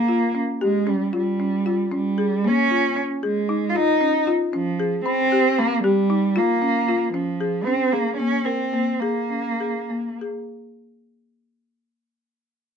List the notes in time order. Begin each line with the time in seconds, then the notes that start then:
Already playing: A#3
0.08 F4
0.35 C#4
0.61 G#3 G4
0.87 G3 C#4
1.13 G3 F4
1.40 C#4
1.66 F4
1.91 G3 C#4
2.18 G#4
2.44 A#3 C#4
2.71 F4
2.96 C#4
3.23 G#3 G#4
3.49 D#4
3.69 F4
3.75 D#4 F4
4.01 C#4
4.27 F4
4.53 F3 C#4
4.80 G#4
5.05 C4
5.32 G4
5.58 A#3 C4
5.83 G3 G4
6.10 D#4
6.36 A#3 F4
6.62 C#4
6.88 F4
7.13 F3 C#4
7.41 G#4
7.64 C4 C#4
7.92 A#3 G#4
8.17 A#3 C#4
8.44 C4 A#4
8.73 A#3
9.00 A#3 G#4
9.30 C#4
9.60 G#4
9.90 A#3
10.21 G#4